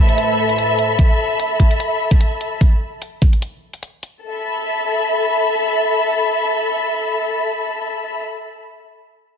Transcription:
Already playing: A2 A3 A4 B4 C5 E5 B5
0.09 closed hi-hat
0.18 closed hi-hat
0.49 closed hi-hat
0.58 closed hi-hat
0.79 closed hi-hat
0.99 kick, closed hi-hat
1.40 closed hi-hat
1.60 kick, closed hi-hat
1.71 closed hi-hat
1.80 closed hi-hat
2.11 kick, closed hi-hat
2.21 closed hi-hat
2.41 closed hi-hat
2.61 kick, closed hi-hat
3.02 closed hi-hat
3.22 kick, closed hi-hat
3.33 closed hi-hat
3.42 closed hi-hat
3.73 closed hi-hat
3.83 closed hi-hat
4.03 closed hi-hat
4.23 A4
4.30 E5
4.36 B5

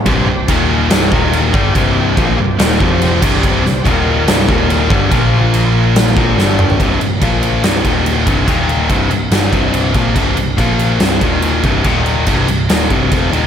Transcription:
0.05 C1 C2 G2 C3 C4 G4 D5, kick, crash
0.26 C1 C2 G2
0.48 D#1 D#2 A#2 D#3 D#4 A#4 F5, kick, crash
0.90 C1 C2 G2 C3 C4 G4 D5, snare, crash
1.11 D#1 D#2 A#2 D#3 D#4 A#4 F5, kick
1.33 crash
1.53 G1 G2 D3 G3 C4 G4 D5, kick
1.75 C1 C2 G2 C3, kick, crash
2.17 A#1 A#2 F3 A#3, kick, crash
2.38 C1 C2 G2
2.58 D#1 D#2 A#2 D#3, snare, crash
2.80 F1 F2 C3 F3 G4, kick
3.02 crash
3.21 C1 C2 G2 C3 D5, kick, crash
3.42 C1 C2 G2 C3, kick, crash
3.64 C1 C2 G2, snare
3.84 D#1 D#2 A#2 D#3 D#4 A#4 F5, kick, crash
4.26 C1 C2 G2 C3 C4 G4 D5, snare, crash
4.47 D#1 D#2 A#2 D#3 D#4 A#4 F5, kick
4.70 crash
4.88 G1 G2 D3 G3 C4 G4 D5, kick
5.11 A#1 A#2 F3 A#3 F4 C5, kick, crash
5.54 crash
5.96 snare, crash
6.16 A#1 A#2 F3 A#3 C4 G4 D5, kick
6.36 G1 G2 D3 G3 D4 A4, snare
6.59 mid tom
6.70 floor tom
6.80 C1 C2 G2 C3, kick, crash
7.01 C1 C2 G2, crash
7.21 A#1 A#2 F3 A#3, kick, crash
7.43 crash
7.63 C1 C2 G2 C3, snare, crash
7.84 D#1 D#2 A#2 D#3, kick, crash
8.06 crash
8.26 C1 C2 G2 C3, kick, crash
8.47 D#1 D#2 A#2 D#3, kick, crash
8.69 crash
8.89 C1 C2 G2 C3, kick, crash
9.10 C1 C2 G2, crash
9.31 G1 G2 D3 G3, snare, crash
9.52 C1 C2 G2 C3, kick, crash
9.74 crash
9.94 A#1 A#2 F3 A#3, kick, crash
10.16 C1 C2 G2 C3, kick, crash
10.36 C1 C2 G2, crash
10.57 A#1 A#2 F3 A#3, kick, crash
10.79 crash
11.00 C1 C2 G2 C3, snare, crash
11.21 D#1 D#2 A#2 D#3, kick, crash
11.42 crash
11.63 C1 C2 G2 C3, kick, crash
11.84 D#1 D#2 A#2 D#3, kick, crash
12.06 crash
12.26 C1 C2 G2 C3, kick, crash
12.48 C1 C2 G2, crash
12.69 D#1 D#2 A#2 D#3, snare, crash
12.90 C1 C2 G2 C3, kick, crash
13.11 F1 F2 C3 F3, kick, crash
13.32 D#1 D#2 A#2 D#3, crash

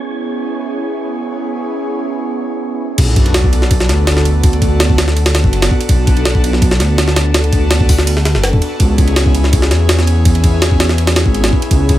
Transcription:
Already playing: C#5 C#6
0.07 B3 C#4 E4 G#4
2.98 B1 B3 D4 F#4 A4, kick, crash, ride, sub drop
3.16 kick, ride
3.26 ride
3.34 snare, ride
3.44 kick
3.53 ride
3.62 snare
3.71 kick, ride
3.80 snare
3.89 D2 B3 D4 F#4 A4, snare, ride
4.07 snare, ride
4.17 snare
4.25 ride
4.43 B3 D4 F#4 A4, kick, ride
4.53 ride
4.62 kick, ride
4.80 snare, ride
4.89 kick
4.98 snare, ride
5.08 snare
5.17 ride
5.26 snare, ride
5.34 B3 D4 F#4 A4, snare, ride
5.44 F#1, kick
5.53 ride
5.62 snare, ride
5.71 kick
5.81 ride
5.89 B1 B3 D4 F#4 A4, kick, ride
6.07 kick, ride
6.17 ride
6.25 snare, ride
6.35 kick
6.44 ride
6.53 snare
6.62 kick, ride
6.71 snare
6.80 D2 B3 D4 F#4 A4, snare, ride
6.98 snare, ride
7.08 snare
7.16 snare, ride
7.34 B3 D4 F#4 A4, snare, ride
7.44 ride
7.53 kick, ride
7.71 snare, ride
7.80 kick
7.89 kick, open hi-hat
7.98 snare
8.07 ride
8.17 snare
8.25 snare, ride
8.35 F#1 B3 D4 F#4 A4, snare
8.44 snare, ride
8.53 kick
8.62 B3 D4 F#4 A4, ride
8.80 C#2 B3 C#4 E4 G#4, kick, ride
8.98 kick, ride
9.08 ride
9.16 snare, ride
9.26 kick
9.35 ride
9.44 snare
9.53 kick, ride
9.62 snare
9.71 E2 B3 C#4 E4 G#4, snare, ride
9.89 snare, ride
9.99 snare
10.07 ride
10.25 B3 C#4 E4 G#4, kick, ride
10.35 ride
10.44 kick, ride
10.62 snare, ride
10.71 kick
10.80 snare, ride
10.89 snare
10.98 ride
11.07 snare, ride
11.16 B3 C#4 E4 G#4, snare, ride
11.26 G#1, kick
11.35 ride
11.44 snare, ride
11.53 kick
11.62 ride
11.71 C#2 B3 C#4 E4 G#4, kick, ride
11.89 kick, ride

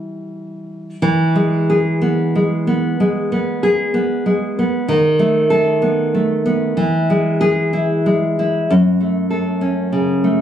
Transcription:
Already playing: E3 G3 E4 E5
1.02 E3
1.35 G#3
1.70 G#4
2.01 B3
2.35 G#3
2.67 B3
3.00 G#3
3.32 B3
3.63 G#4
3.94 B3
4.26 G#3
4.59 B3
4.88 D#3
5.19 A3
5.50 A4
5.82 B3
6.14 A3
6.46 B3
6.77 E3
7.10 G#3
7.41 G#4
7.73 E4
8.06 G#3
8.39 E4
8.70 F#2
9.00 A3
9.30 A4
9.61 C#4
9.92 C#3
10.24 A3

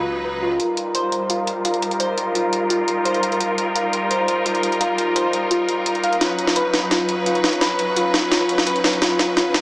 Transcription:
Already playing: C#2 F#3 D#4 B4
0.25 B4
0.42 F4
0.60 G3 D#4 F4 A#4, closed hi-hat
0.77 closed hi-hat
0.95 C5, closed hi-hat
1.12 closed hi-hat
1.30 F4, closed hi-hat
1.47 closed hi-hat
1.65 F4, closed hi-hat
1.74 closed hi-hat
1.82 closed hi-hat
1.91 closed hi-hat
2.00 C5, closed hi-hat
2.18 closed hi-hat
2.35 F4, closed hi-hat
2.53 closed hi-hat
2.70 F4, closed hi-hat
2.88 closed hi-hat
3.05 C5, closed hi-hat
3.14 closed hi-hat
3.23 closed hi-hat
3.32 closed hi-hat
3.40 F4, closed hi-hat
3.58 closed hi-hat
3.75 F4, closed hi-hat
3.93 closed hi-hat
4.10 C5, closed hi-hat
4.28 closed hi-hat
4.46 F4, closed hi-hat
4.55 closed hi-hat
4.63 closed hi-hat
4.72 closed hi-hat
4.81 F4, closed hi-hat
4.98 closed hi-hat
5.16 C5, closed hi-hat
5.33 closed hi-hat
5.51 F4, closed hi-hat
5.68 F4, closed hi-hat
5.86 closed hi-hat
5.95 closed hi-hat
6.04 F5, closed hi-hat
6.13 closed hi-hat
6.21 F#3 C#4 F4 B4, snare, closed hi-hat
6.39 closed hi-hat
6.47 snare
6.56 B4, closed hi-hat
6.74 snare, closed hi-hat
6.91 F4, snare, closed hi-hat
7.09 closed hi-hat
7.26 F4, closed hi-hat
7.35 closed hi-hat
7.44 snare, closed hi-hat
7.53 closed hi-hat
7.61 B4, snare, closed hi-hat
7.79 closed hi-hat
7.96 F4, closed hi-hat
8.14 snare, closed hi-hat
8.32 F4, snare, closed hi-hat
8.49 closed hi-hat
8.58 snare
8.67 B4, closed hi-hat
8.76 closed hi-hat
8.84 snare, closed hi-hat
8.93 closed hi-hat
9.02 F4, snare, closed hi-hat
9.19 snare, closed hi-hat
9.37 F4, snare, closed hi-hat
9.54 snare, closed hi-hat

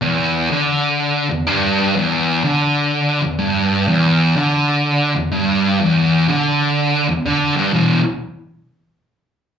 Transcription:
0.02 E2
0.50 D3
1.29 E2
1.47 G2
1.96 E2
2.43 D3
3.22 E2
3.39 G2
3.88 E2
4.36 D3
5.15 E2
5.32 G2
5.81 E2
6.28 D3
7.08 E2
7.25 D3
7.56 G2
7.74 E2 B2 E3

